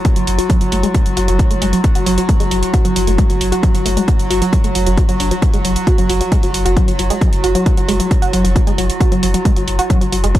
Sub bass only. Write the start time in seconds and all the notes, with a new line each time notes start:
0.16 F#1
0.27 F#1
0.61 F#1
0.72 F#1
1.06 F#1
1.17 F#1
1.28 F#1
1.51 F#1
1.62 F#1
1.95 F#1
2.06 F#1
2.40 F#1
2.51 F#1
2.85 F#1
2.96 F#1
3.07 F#1
3.30 F#1
3.41 F#1
3.74 F#1
3.86 F#1
4.19 F#1
4.30 F#1
4.64 F#1
4.75 F#1
4.87 F#1
5.09 F#1
5.20 F#1
5.53 F#1
5.64 F#1
5.98 F#1
6.09 F#1
6.43 F#1
6.54 F#1
6.65 F#1
6.88 F#1
6.99 F#1
7.33 F#1
7.44 F#1
7.77 F#1
7.88 F#1
8.22 F#1
8.33 F#1
8.45 F#1
8.67 F#1
8.78 F#1
9.12 F#1
9.23 F#1
9.57 F#1
9.68 F#1
10.01 F#1
10.12 F#1
10.24 F#1